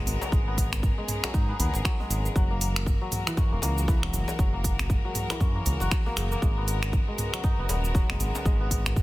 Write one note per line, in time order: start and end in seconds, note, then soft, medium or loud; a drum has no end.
0.00 2.32 C#3 medium
0.00 1.23 F#3 medium
0.00 0.31 G#3 medium
0.00 0.47 B3 medium
0.00 2.32 B3 medium
0.00 0.93 D#4 medium
0.00 0.30 F#4 medium
0.00 2.31 A#4 medium
0.06 0.17 G#1 loud
0.06 open hi-hat medium
0.06 djembe tone loud
0.06 shaker loud
0.21 djembe slap loud
0.21 shaker medium
0.32 0.90 G#1 loud
0.32 0.97 G#3 medium
0.32 2.34 G#4 medium
0.32 kick loud
0.32 djembe tone medium
0.32 shaker soft
0.47 1.48 B3 medium
0.58 kick medium
0.58 open hi-hat medium
0.58 shaker loud
0.73 finger snap loud
0.73 djembe bass loud
0.73 shaker medium
0.83 kick loud
0.83 mid tom medium
0.83 shaker soft
0.98 1.99 G#3 medium
1.08 mid tom medium
1.08 open hi-hat medium
1.08 djembe tone medium
1.08 shaker medium
1.24 1.84 F#3 medium
1.24 finger snap medium
1.24 djembe slap loud
1.24 shaker medium
1.34 1.53 G#2 loud
1.34 2.96 D#4 medium
1.34 kick loud
1.34 mid tom medium
1.34 shaker soft
1.49 1.59 B3 medium
1.59 1.70 D#2 medium
1.59 2.57 B3 medium
1.59 open hi-hat medium
1.59 djembe tone medium
1.59 djembe bass medium
1.59 shaker loud
1.74 1.81 G#1 medium
1.74 djembe slap medium
1.74 shaker medium
1.85 2.35 F#3 medium
1.85 finger snap medium
1.85 kick loud
1.85 shaker soft
2.00 2.41 G#3 medium
2.00 djembe tone medium
2.10 2.29 G#1 loud
2.10 open hi-hat medium
2.10 shaker loud
2.25 shaker medium
2.36 2.94 F#1 loud
2.36 6.38 E3 medium
2.36 3.00 F#3 medium
2.36 6.38 G#3 medium
2.36 9.03 F#4 medium
2.36 9.03 A#4 medium
2.36 kick loud
2.36 shaker soft
2.51 3.52 A#3 medium
2.61 open hi-hat medium
2.61 shaker loud
2.76 finger snap loud
2.76 shaker medium
2.86 kick loud
2.86 mid tom medium
2.86 shaker soft
3.01 4.02 F#3 medium
3.12 mid tom medium
3.12 open hi-hat medium
3.12 djembe tone medium
3.12 shaker loud
3.27 3.87 E3 medium
3.27 finger snap medium
3.27 shaker medium
3.37 5.11 C#4 medium
3.37 kick loud
3.37 mid tom medium
3.37 djembe slap medium
3.37 shaker soft
3.52 3.59 E1 medium
3.52 3.62 A#3 medium
3.62 3.95 C#2 medium
3.62 4.53 A#3 medium
3.62 open hi-hat medium
3.62 djembe slap loud
3.62 shaker loud
3.78 shaker medium
3.88 5.29 E3 medium
3.88 kick loud
3.88 djembe tone loud
3.88 shaker soft
4.03 4.10 E1 medium
4.03 4.38 F#3 medium
4.03 finger snap medium
4.03 djembe bass medium
4.13 4.24 F#1 loud
4.13 open hi-hat medium
4.13 djembe tone medium
4.13 shaker loud
4.28 djembe slap loud
4.28 shaker medium
4.39 4.97 F#1 loud
4.39 5.04 F#3 medium
4.39 kick loud
4.39 djembe tone medium
4.39 shaker soft
4.53 5.55 A#3 medium
4.64 kick medium
4.64 open hi-hat medium
4.64 shaker medium
4.79 finger snap medium
4.79 djembe bass medium
4.79 shaker medium
4.90 kick loud
4.90 mid tom medium
4.90 shaker soft
5.05 5.90 F#3 medium
5.15 mid tom medium
5.15 open hi-hat medium
5.15 djembe tone medium
5.15 shaker loud
5.30 6.22 E3 medium
5.30 finger snap medium
5.30 djembe slap loud
5.30 shaker medium
5.40 5.59 F#2 loud
5.40 7.14 C#4 medium
5.40 kick loud
5.40 mid tom medium
5.40 shaker soft
5.55 6.06 A#3 medium
5.65 5.76 C#2 medium
5.65 open hi-hat medium
5.65 djembe tone medium
5.65 djembe bass medium
5.65 shaker loud
5.80 5.88 F#1 medium
5.80 7.27 F#4 medium
5.80 djembe slap medium
5.80 shaker medium
5.91 6.22 F#3 medium
5.91 finger snap medium
5.91 kick loud
5.91 shaker soft
6.06 6.31 A#3 loud
6.06 djembe tone medium
6.17 6.36 F#1 loud
6.17 6.47 C#3 medium
6.17 finger snap medium
6.17 open hi-hat medium
6.17 shaker loud
6.32 6.63 A#3 loud
6.32 shaker medium
6.42 7.00 G#1 loud
6.42 9.03 C#3 medium
6.42 7.07 G#3 medium
6.42 9.03 B3 medium
6.42 kick loud
6.42 shaker soft
6.57 7.59 B3 medium
6.68 open hi-hat medium
6.68 shaker medium
6.83 finger snap medium
6.83 shaker medium
6.93 kick loud
6.93 mid tom medium
6.93 shaker soft
7.08 8.08 G#3 medium
7.18 mid tom medium
7.18 open hi-hat medium
7.18 djembe tone medium
7.18 shaker medium
7.33 7.93 F#3 medium
7.33 finger snap medium
7.33 shaker medium
7.44 9.03 D#4 medium
7.44 kick loud
7.44 mid tom medium
7.44 djembe slap medium
7.44 shaker soft
7.59 7.66 F#1 medium
7.59 7.69 B3 medium
7.69 8.02 D#1 medium
7.69 8.60 B3 medium
7.69 open hi-hat medium
7.69 djembe slap loud
7.69 shaker loud
7.85 shaker medium
7.94 9.03 F#3 medium
7.94 kick loud
7.94 djembe tone medium
7.94 shaker soft
8.10 8.17 F#1 medium
8.10 8.44 G#3 medium
8.10 finger snap medium
8.10 djembe bass medium
8.20 8.30 G#1 loud
8.20 open hi-hat medium
8.20 djembe tone loud
8.20 shaker loud
8.35 djembe slap loud
8.35 shaker medium
8.45 9.03 G#1 loud
8.45 9.03 G#3 medium
8.45 kick loud
8.45 djembe tone medium
8.45 shaker soft
8.60 9.03 B3 medium
8.71 kick medium
8.71 open hi-hat medium
8.71 shaker medium
8.86 finger snap medium
8.86 djembe bass medium
8.86 shaker medium
8.96 kick loud
8.96 mid tom loud
8.96 shaker soft